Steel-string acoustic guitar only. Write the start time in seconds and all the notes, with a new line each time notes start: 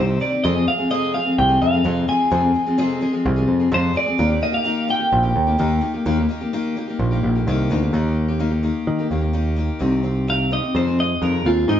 Already playing: C3
0.00 D#3 C4 D#4 G4
0.20 D#3 C4 D#4 G4
0.32 C4 D#4 G4
0.44 F2 C3 F3 G#3 C4 G#4
0.56 F3 G#3 C4 G#4
0.67 F3 G#3 C4 G#4
0.78 F3 G#3 C4 G#4
0.90 F2 C3 F3 G#3 C4 G#4
1.13 F3 G#3 C4 G#4
1.25 F3 G#3 C4 G#4
1.48 F3 G#3 C4 G#4
1.73 F3 G#3 C4 G#4
1.84 F2 C3 F3 G#3 C4 G#4
2.08 F3 G#3 C4 G#4
2.31 F2 C3 F3 G#3 C4 G#4
2.42 F3 G#3 C4 G#4
2.54 F3 G#3 C4 G#4
2.66 F3 G#3 C4 G#4
2.78 F2 C3 F3 G#3 C4 G#4
3.01 F3 G#3 C4 G#4
3.12 F3 G#3 C4 G#4
3.36 F3 G#3 C4 G#4
3.59 F3 G#3 C4 G#4
3.71 F2 C3 F3 G#3 C4 G#4
3.93 F3 G#3 C4 G#4
4.06 F3 G#3 C4 G#4
4.18 D#3 A#3 D#4 G4
4.30 A#3 D#4 G4
4.41 D#3 A#3 D#4 G4
4.52 A#3 D#4 G4
4.64 D#3 A#3 D#4 G4
4.87 D#3 A#3 D#4 G4
4.99 A#3 D#4 G4
5.23 A#3 D#4 G4
5.46 A#3 D#4 G4
5.58 D#3 A#3 D#4 G4
5.81 D#3 A#3 D#4 G4
5.94 A#3 D#4 G4
6.06 D#3 A#3 D#4 G4
6.18 A#3 D#4 G4
6.29 D#3 A#3 D#4 G4
6.41 A#3 D#4 G4
6.53 D#3 A#3 D#4 G4
6.76 D#3 A#3 D#4 G4
6.88 A#3 D#4 G4
7.11 A#3 D#4 G4
7.35 A#3 D#4 G4
7.48 D#3 A#3 D#4 G4
7.70 D#3 A#3 D#4 G4
7.82 A#3 D#4 G4
7.93 D#3 A#3 D#4 G4
8.28 A#3 D#4 G4
8.39 D#3 A#3 D#4 G4
8.51 A#3 D#4 G4
8.63 D#3 A#3 D#4 G4
8.99 A#3 D#4 G4
9.11 D#3 A#3 D#4 G4
9.21 A#3 D#4 G4
9.33 D#3 A#3 D#4 G4
9.56 D#3 A#3 D#4 G4
9.79 C3 D#3 C4 D#4 G4
10.03 D#3 C4 D#4 G4
10.27 C3 D#3 C4 D#4 G4
10.51 D#3 C4 D#4 G4
10.63 C4 D#4 G4
10.75 F2 C3 D#3 G#3 C4 G#4
10.87 D#3 G#3 C4 G#4
10.98 D#3 G#3 C4 G#4
11.22 F2 C3 D#3 G#3 C4 G#4
11.45 D#3 G#3 C4 G#4
11.69 G#2 D#3 G#3 C4 D#4 G#4